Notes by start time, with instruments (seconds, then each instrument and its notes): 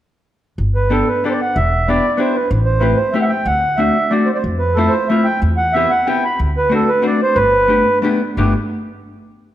0.58 upright bass G1
0.75 accordion B4
0.90 hollow-body jazz guitar B3 D4 G4 A4, accordion A4
1.07 accordion B4
1.24 hollow-body jazz guitar B3 D4 G4 A4, accordion D5
1.30 accordion C5 D5
1.42 accordion F#5
1.56 upright bass E1, accordion E5
1.88 hollow-body jazz guitar B3 D4 E4 G4, accordion D5
2.17 hollow-body jazz guitar B3 D4 E4 G4, accordion C5
2.35 accordion B4
2.51 upright bass A1
2.65 accordion C5
2.79 hollow-body jazz guitar A3 C4 E4 G4, accordion B4
2.96 accordion C5
3.12 hollow-body jazz guitar A3 C4 E4 G4, accordion E5
3.21 accordion E5 F#5
3.29 accordion G5
3.45 upright bass D2, accordion F#5
3.77 hollow-body jazz guitar A3 C4 D4 F#4, accordion E5
4.11 hollow-body jazz guitar A3 C4 D4 F#4, accordion D5
4.25 accordion C5
4.34 accordion C5 D5
4.44 upright bass F2
4.59 accordion B4
4.75 hollow-body jazz guitar A3 C4 E4, accordion A4
4.79 hollow-body jazz guitar F4
4.88 accordion C5
5.08 hollow-body jazz guitar A3 C4 E4 F4, accordion E5
5.24 accordion G5
5.42 upright bass E2
5.57 accordion F#5
5.73 hollow-body jazz guitar B3 C4 G4, accordion E5
5.77 hollow-body jazz guitar E4
5.90 accordion F#5
6.07 hollow-body jazz guitar B3 C4 E4 G4, accordion G5
6.25 accordion B5
6.39 upright bass D2
6.57 accordion B4
6.69 hollow-body jazz guitar A3 C4 D4 F#4
6.74 accordion A4
6.88 accordion B4
7.02 hollow-body jazz guitar A3 C4 D4 F#4
7.06 accordion D5
7.22 accordion C5
7.35 upright bass G1, accordion B4
7.68 hollow-body jazz guitar A3 B3 D4 G4
8.02 hollow-body jazz guitar A3 B3 D4 G4
8.37 upright bass G1, hollow-body jazz guitar A3 B3 D4 G4, accordion G4